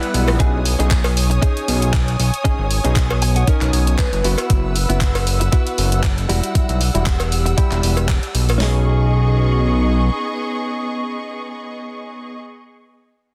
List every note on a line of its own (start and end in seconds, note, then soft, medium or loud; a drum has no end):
0.00 0.37 G3 medium
0.00 0.37 B3 medium
0.00 0.37 E4 medium
0.00 0.37 B4 medium
0.00 0.35 F#5 medium
0.00 0.37 F#5 medium
0.00 0.35 E6 medium
0.00 closed hi-hat soft
0.14 0.30 B1 medium
0.14 open hi-hat loud
0.28 0.38 A#1 loud
0.28 cross-stick medium
0.28 open hi-hat medium
0.28 cowbell medium
0.39 0.76 B1 medium
0.39 0.59 C#4 loud
0.39 0.59 D#4 medium
0.39 0.60 G#4 loud
0.39 4.20 C#5 medium
0.39 4.20 G#5 medium
0.39 4.20 D#6 medium
0.39 kick loud
0.39 closed hi-hat medium
0.65 open hi-hat loud
0.79 1.39 B1 medium
0.79 0.91 C#4 medium
0.79 0.91 D#4 medium
0.79 0.91 G#4 medium
0.79 closed hi-hat soft
0.91 kick loud
0.91 clap loud
0.91 closed hi-hat medium
1.04 muted clean electric guitar stroke soft
1.04 open hi-hat medium
1.04 cowbell medium
1.17 open hi-hat loud
1.30 muted clean electric guitar stroke medium
1.30 closed hi-hat soft
1.42 1.93 C#4 medium
1.42 1.93 D#4 medium
1.42 1.94 G#4 medium
1.42 kick loud
1.42 closed hi-hat medium
1.57 closed hi-hat soft
1.68 2.16 B1 medium
1.68 open hi-hat loud
1.82 closed hi-hat soft
1.93 kick loud
1.93 clap loud
1.93 closed hi-hat medium
2.08 closed hi-hat soft
2.19 2.31 B1 medium
2.19 open hi-hat loud
2.34 closed hi-hat soft
2.44 2.56 G#1 soft
2.44 2.64 C#4 loud
2.44 2.65 D#4 medium
2.44 2.65 G#4 loud
2.44 kick loud
2.44 closed hi-hat medium
2.59 2.80 G#1 medium
2.71 open hi-hat medium
2.84 3.44 B1 medium
2.84 2.96 C#4 medium
2.84 2.96 D#4 medium
2.84 2.96 G#4 medium
2.84 closed hi-hat soft
2.96 kick medium
2.96 clap loud
2.96 closed hi-hat medium
3.10 muted clean electric guitar stroke soft
3.10 cowbell medium
3.22 3.35 G#5 medium
3.22 open hi-hat loud
3.36 3.47 F#5 medium
3.36 muted clean electric guitar stroke medium
3.36 closed hi-hat soft
3.47 3.98 C#4 medium
3.47 3.99 D#4 medium
3.47 3.98 A#4 medium
3.47 3.71 D#5 medium
3.47 kick loud
3.47 closed hi-hat medium
3.61 3.71 B1 loud
3.61 clap soft
3.61 closed hi-hat soft
3.73 4.09 B1 medium
3.73 3.97 C#5 medium
3.73 open hi-hat medium
3.87 closed hi-hat soft
3.98 4.46 B4 medium
3.98 kick medium
3.98 clap loud
3.98 closed hi-hat medium
4.13 4.22 F#1 medium
4.13 closed hi-hat soft
4.24 4.36 F#1 loud
4.24 4.75 B3 medium
4.24 4.76 E4 medium
4.24 4.76 F#4 medium
4.24 6.27 B4 medium
4.24 8.56 F#5 medium
4.24 6.27 E6 medium
4.24 open hi-hat medium
4.38 closed hi-hat soft
4.38 cowbell soft
4.50 4.86 F#1 loud
4.50 kick loud
4.50 closed hi-hat medium
4.76 open hi-hat medium
4.89 5.50 F#1 medium
4.89 5.01 B3 medium
4.89 5.01 E4 medium
4.89 5.01 F#4 medium
4.89 closed hi-hat soft
5.01 kick medium
5.01 clap loud
5.01 closed hi-hat medium
5.15 muted clean electric guitar stroke soft
5.15 open hi-hat medium
5.15 cowbell medium
5.27 open hi-hat medium
5.40 muted clean electric guitar stroke medium
5.40 closed hi-hat soft
5.52 6.03 B3 medium
5.52 6.04 E4 medium
5.52 6.04 F#4 medium
5.52 kick loud
5.52 closed hi-hat medium
5.67 closed hi-hat soft
5.78 6.26 F#1 medium
5.78 open hi-hat medium
5.92 closed hi-hat soft
6.03 kick medium
6.03 clap loud
6.03 closed hi-hat medium
6.18 closed hi-hat soft
6.29 6.41 E1 medium
6.29 6.80 G3 medium
6.29 8.58 G3 medium
6.29 6.81 E4 medium
6.29 6.81 F#4 medium
6.29 8.58 E6 medium
6.29 open hi-hat medium
6.43 closed hi-hat soft
6.55 6.66 B1 soft
6.55 kick loud
6.55 closed hi-hat medium
6.69 6.90 B1 medium
6.69 closed hi-hat soft
6.81 open hi-hat medium
6.94 7.55 E1 medium
6.94 7.06 G3 medium
6.94 7.06 E4 medium
6.94 7.07 F#4 medium
6.94 closed hi-hat soft
7.06 kick medium
7.06 clap loud
7.06 closed hi-hat medium
7.20 muted clean electric guitar stroke soft
7.20 closed hi-hat soft
7.20 cowbell soft
7.32 open hi-hat medium
7.46 muted clean electric guitar stroke medium
7.46 closed hi-hat soft
7.57 8.09 G3 medium
7.57 8.09 E4 medium
7.57 8.09 G4 medium
7.57 kick loud
7.57 closed hi-hat medium
7.71 7.81 E1 medium
7.71 clap soft
7.71 closed hi-hat soft
7.83 8.19 E1 medium
7.83 open hi-hat medium
7.97 closed hi-hat soft
7.97 cowbell medium
8.09 kick medium
8.09 clap loud
8.09 closed hi-hat medium
8.23 closed hi-hat soft
8.35 8.50 B1 medium
8.35 open hi-hat medium
8.48 8.58 A#1 medium
8.48 open hi-hat soft
8.48 cowbell medium
8.58 10.10 B1 medium
8.58 12.38 B3 medium
8.58 12.36 C#4 medium
8.58 12.38 D#4 medium
8.58 12.38 G#4 medium
8.58 12.38 D#5 medium
8.58 12.38 C#6 medium
8.58 snare loud
8.58 open hi-hat medium
8.63 12.40 G#4 medium